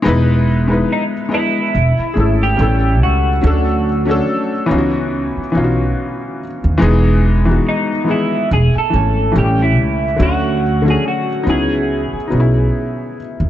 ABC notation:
X:1
M:4/4
L:1/16
Q:"Swing 16ths" 1/4=71
K:E
V:1 name="Clean electric guitar"
z4 D2 E4- E =G3 F2- | F12- F2 z2 | z4 D2 E2 G A3 =G E3 | F3 G F2 G8 z2 |]
V:2 name="Felt piano"
[G,B,DEB]2 z [G,B,DEB]2 z [G,B,EBd]2 z2 [A,CEGA]2 [=G,A,B,CEA]3 z | [F,A,C=DA]2 z [F,A,CDA]2 z [E,B,C^D=F^F]3 z [E,B,CD=F^F]4 z2 | [E,G,B,DG]2 z [E,G,B,DF]2 z [E,G,B,Gd]2 z2 [E,A,Cg]2 [E,=G,A,C=G]3 z | [=D,F,A,CF]2 z [D,F,A,CF]2 z [F,B,C^DE]3 z [F,B,CDE]4 z2 |]
V:3 name="Upright bass" clef=bass
E,,,4 z4 E,,, z G,,,2 A,,,2 C,,2 | =D,,4 z2 C,,3 z B,,,2 z3 ^D,, | E,,,4 z4 E,,, z G,,,2 A,,,2 C,,2 | =D,,4 z2 C,,3 z B,,,2 z3 ^D,, |]